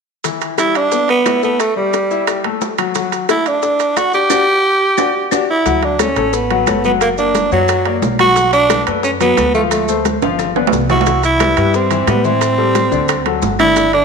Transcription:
0.24 E3 E4, high bongo, high timbale, maracas
0.41 high bongo, high timbale, maracas
0.58 G3 E4 G4, high bongo, high timbale, claves, maracas
0.75 D4, high timbale, maracas
0.92 B3 B4, high bongo, maracas
1.09 B3, high bongo, high timbale
1.26 E4 E5, high bongo, low bongo, high timbale, low timbale, claves, maracas
1.43 A3 B3 A4, high bongo, maracas
1.60 A3, high bongo, high timbale, claves, maracas
1.77 G3 G4, high bongo
1.93 high bongo, high timbale, maracas
2.11 E4 E5, high bongo, maracas
2.27 G3 G4, high bongo, high timbale, claves, maracas
2.44 A3 A4, high timbale
2.61 high bongo, low bongo, low timbale, maracas
2.78 F#3 F#4, high bongo, high timbale, claves, maracas
2.95 F#3 F#4, high bongo, high timbale, maracas
3.12 high bongo, high timbale, maracas
3.29 A3 E4 A4, high bongo, high timbale, claves, maracas
3.46 D4, high timbale, maracas
3.63 D4 D5, high bongo, maracas
3.79 high bongo, high timbale, maracas
3.97 F#4 F#5, high bongo, low bongo, high timbale, claves, maracas
4.13 D4 G4 D5, high bongo, maracas
4.30 D4 F#4 G4, low bongo, high timbale, claves, maracas
4.98 D4 F#4 G4, low bongo, high timbale, claves, maracas
5.31 D4 F#4 G4, low bongo, high timbale, claves, maracas
5.50 E4
5.65 D2 F#3 F#4 F#5, high bongo, high conga, high timbale, maracas
5.82 D4, high bongo, high conga, high timbale
5.99 A3 C#4 A4 C#5, high bongo, high conga, high timbale, claves, maracas
6.16 A1 A3 A4 C#5, high conga, high timbale, maracas
6.33 B3, high bongo, high conga, maracas
6.50 F#3 F#4 F#5, high bongo, high conga, high timbale
6.67 F#1 A3 A4 C#5, high bongo, low bongo, high conga, high timbale, claves, maracas
6.84 F#3 B3 F#4 F#5, high bongo, high conga, maracas
7.01 A#3, high bongo, high conga, high timbale, claves, maracas
7.18 A#3 D4 A#4 D5, high bongo, high conga, maracas
7.35 high bongo, high conga, high timbale, maracas
7.51 F#2 F#3 F#4 F#5, high bongo, high conga, maracas
7.68 high bongo, high conga, high timbale, claves, maracas
7.85 A#3 A#4 D5, high conga, high timbale
8.02 B1, high bongo, low bongo, high conga, low timbale, maracas
8.19 F#3 F#4 F#5, high bongo, high conga, high timbale, claves, maracas
8.36 F#3 F#4 F#5, high bongo, high timbale, maracas
8.53 D4, high bongo, high conga, high timbale, maracas
8.70 A3 A4 B4, high bongo, high conga, high timbale, claves, maracas
8.87 F#2 A3 A4 B4, high conga, high timbale, maracas
9.03 C#4, high bongo, high conga, maracas
9.21 F#3 B3 F#4 F#5, high bongo, high conga, high timbale, maracas
9.37 D2 A3 A4 B4, high bongo, low bongo, high conga, high timbale, low timbale, claves, maracas
9.55 F3 A3 F4 F5, high bongo, high conga, maracas
9.71 A3, high bongo, high conga, high timbale, claves, maracas
9.88 A3 A4 C5, high bongo, maracas
10.05 high bongo, high conga, high timbale, maracas
10.22 G1 F3 F4 F5, high bongo, low conga, high timbale, maracas
10.39 high bongo, low conga, claves, maracas
10.56 B3 B4 D5, low conga, high timbale
10.67 low timbale
10.73 C2, high bongo, low bongo, low conga, maracas
10.90 E3 E4 F#4 E5, high bongo, low conga, low timbale, claves, maracas
11.01 low timbale
11.06 E3 E4 E5, high bongo, high conga, high timbale, maracas
11.23 E4, high bongo, high conga, high timbale, maracas
11.40 G3 G4 B4, high bongo, high conga, high timbale, claves, maracas
11.57 G2 G3 G4 B4, high conga, high timbale, maracas
11.74 C4, high bongo, high conga, maracas
11.91 E3 E4 E5, high bongo, high conga, high timbale, maracas
12.07 A2 G3 B3 G4 B4, high bongo, low bongo, high conga, high timbale, low timbale, claves, maracas
12.24 E3 C4 E4 E5, high bongo, high conga, maracas
12.41 high bongo, high conga, high timbale, claves, maracas
12.58 G3 G4 A4, high bongo, high conga
12.75 high bongo, high conga, high timbale, maracas
12.92 D2 D3 D4 D5, high bongo, high conga, maracas
13.08 high bongo, high conga, high timbale, claves, maracas
13.26 F#3 F#4 A4, high conga, high timbale
13.42 G1, high bongo, low bongo, high conga, low timbale, maracas
13.59 D3 D4 E4 D5, high bongo, high conga, high timbale, claves, maracas
13.76 D3 D4 D5, high bongo, high conga, high timbale, maracas
13.93 D4, high bongo, high conga, high timbale

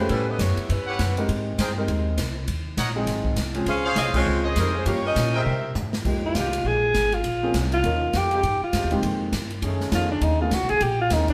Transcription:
0.00 A3 C#4 F#4 G4 B4
0.09 A2 G3 C#4 E4 B4, kick, ride
0.28 B3 E4 G4 D#5
0.39 F#2 B3 E4 G4 C#5, kick, snare, hi-hat pedal, ride
0.57 muted upright bass stroke, ride
0.69 G2 G3 C#4 E4 B4, kick, ride
0.87 G4 B4 C#5 F#5
0.99 F#2, kick, snare, hi-hat pedal, ride
1.17 G#3 C4 D#4 G4 A#4, ride
1.29 G#2, kick, ride
1.58 G2 G#4 A#4 C5 G5, kick, snare, hi-hat pedal, ride
1.77 G#3 C4 D#4 G4 A#4
1.88 D#2, kick, ride
2.18 C2, kick, snare, hi-hat pedal, ride
2.47 D#2, kick, ride
2.77 A#1 A#4 C#5 D#5 F#5, kick, snare, hi-hat pedal, ride
2.96 F#3 G#3 C4 D#4 G#4
3.07 G#1, kick, snare, ride
3.25 kick
3.36 C2, snare, hi-hat pedal, ride
3.54 F3 G#3 C4 C#4 G#4, ride
3.66 C#2 C#4 G#4 C5 F5, kick, ride
3.84 G#4 C5 C#5 F5
3.96 C2 C4 F4 G#4 D#5, kick, snare, hi-hat pedal, ride
4.14 F3 G#3 C4 C#4 F4 G#4 C#5, muted upright bass stroke, kick, crash
4.26 C#2
4.43 G#4 C5 C#5 D#5
4.56 F2 G3 C4 D#4 A#4, kick, snare, hi-hat pedal, ride
4.75 G#3 C#4 F4 C5
4.86 G2 F3 G3 A#3 C#4 F4 G4 A#4 C#5 F5, kick, ride
5.05 C#4 G4 A#4 D#5
5.16 A#2, kick, snare, hi-hat pedal, ride
5.33 C4 G4 G#4 A#4 C5 E5 G5
5.46 C3, mid tom
5.75 G#2, floor tom, hi-hat pedal
5.93 snare
6.05 F2 F3 G#3 A#3 D#4 G4, kick, crash
6.26 F4
6.34 C2 D#3 G#3 A#3 G4, kick, snare, hi-hat pedal, ride
6.53 ride
6.64 A#1 G#4, kick
6.94 G#1, kick, snare, hi-hat pedal, ride
7.12 F4, ride
7.24 A#1, kick, ride
7.43 F3 A#3 C4 C#4 G#4
7.54 C2, kick, snare, hi-hat pedal, ride
7.72 F4, ride
7.84 D#2 F3 A#3 C#4 D#4 A#4, kick, ride
8.13 F2 G4, kick, snare, hi-hat pedal, ride
8.31 C3 G#3 A#3 G4, ride
8.43 G#2, kick, ride
8.62 F4, muted upright bass stroke
8.73 G2 C3 G#3 A#3 G4, kick, snare, hi-hat pedal, ride
8.84 D#2
8.91 C2 D#3 G#3 A#3 C4 G4, ride
9.02 F2, kick, ride
9.32 G2, kick, snare, hi-hat pedal, ride
9.50 ride
9.62 F#2 D#3 A3 C#4 G#4, kick, ride
9.80 snare
9.92 F2 D#3 A3 B3 C#4 F4 G#4, kick, snare, hi-hat pedal, ride
10.12 D4
10.21 D#2 D#4, kick, ride
10.40 D#3 A3 B3 C#4 F4 G#4
10.51 C#2 F#4, kick, snare, hi-hat pedal, ride
10.61 B1
10.69 A1 G#4, ride
10.81 A#1 G4, kick, ride
11.01 F4
11.10 D#2 D#3 A#3 C4 C#4 D#4 G#4, kick, snare, hi-hat pedal, ride
11.28 D4, kick, ride

